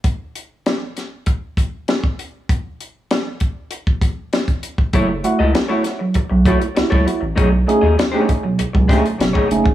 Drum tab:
HH |x-x-x-x-x-x-x-x-|x-x-x-x-x-x-xxx-|x-x-x-x-x-xxx-x-|x-x-x-x-x-xxx-x-|
SD |----o-o-----o---|----o-------o---|----o-o-----o---|----o-----o-o---|
BD |o-------o-o--o--|o-----o--oo--o-o|o-------o-o--o--|o-----o--oo--o-o|